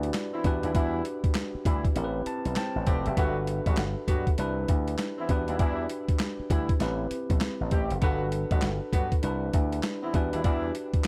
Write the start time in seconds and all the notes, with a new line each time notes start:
Already playing: D4 E4 F#4 G4 B4 D5
0.03 closed hi-hat
0.13 snare, clap, closed hi-hat
0.33 E3 B3 C4 E4
0.44 E2 D4 F#4 G4 B4, kick, closed hi-hat
0.63 D#2 E3 G3 D4 E4, closed hi-hat
0.75 E2 E3 G3 D4 E4, kick, closed hi-hat
1.05 closed hi-hat
1.24 muted slap bass stroke, kick, closed hi-hat
1.34 snare, clap, closed hi-hat
1.55 muted slap bass stroke
1.65 D2 E3 G3 D4 E4, kick, closed hi-hat
1.85 kick, closed hi-hat
1.95 A1 C4 E4 G4 A#4, closed hi-hat
2.04 B4
2.26 A5, muted slap bass stroke, closed hi-hat
2.45 B1, closed hi-hat
2.56 C5 G5 A5, snare, clap, closed hi-hat
2.76 A1
2.86 F1 G3 A3 C4 G4 B4 D5 G5, kick, closed hi-hat
3.06 F#1 G4 E5, closed hi-hat
3.17 G1 F#3 G3 B3 D4 F#4 A4 B4, kick, closed hi-hat
3.47 closed hi-hat
3.66 A1 F#3 G3 B3 F#4, kick, closed hi-hat
3.77 G1, snare, clap, closed hi-hat
4.08 G2 F#3 G3 B3 F#4, kick, closed hi-hat
4.27 kick, closed hi-hat
4.38 C2 D4 E4 G4 B4, closed hi-hat
4.68 D2, kick, closed hi-hat
4.88 closed hi-hat
4.98 snare, clap, closed hi-hat
5.18 E3 B3 C4 E4
5.29 E2 D4 F#4 G4 B4, kick, closed hi-hat
5.48 D#2 E3 G3 D4 E4, closed hi-hat
5.59 E2 E3 G3 D4 E4, kick, closed hi-hat
5.89 closed hi-hat
6.09 muted slap bass stroke, kick, closed hi-hat
6.19 snare, clap, closed hi-hat
6.40 muted slap bass stroke
6.50 D2 E3 G3 D4 E4, kick, closed hi-hat
6.69 kick, closed hi-hat
6.79 A1 C4 E4 G4 B4, snare, closed hi-hat
7.11 muted slap bass stroke, closed hi-hat
7.30 B1, kick, closed hi-hat
7.40 snare, clap, closed hi-hat
7.61 A1
7.71 A1 G3 A3 C4 G4, kick, closed hi-hat
7.90 F#1, closed hi-hat
8.01 G1 F#3 G3 B3 D4 F#4 A4 B4, kick, closed hi-hat
8.32 closed hi-hat
8.51 A1 F#3 G3 B3 F#4, kick, closed hi-hat
8.62 G1, snare, clap, closed hi-hat
8.93 G2 F#3 G3 B3 F#4, kick, closed hi-hat
9.12 kick, closed hi-hat
9.23 C2 D4 E4 G4 B4, closed hi-hat
9.53 D2, kick, closed hi-hat
9.72 closed hi-hat
9.83 snare, clap, closed hi-hat
10.03 E3 B3 C4 E4
10.13 E2 D4 F#4 G4 B4, kick, closed hi-hat
10.33 D#2 E3 G3 D4 E4, closed hi-hat
10.44 E2 E3 G3 D4 E4, kick, closed hi-hat
10.75 closed hi-hat
10.94 muted slap bass stroke, kick, closed hi-hat
11.04 clap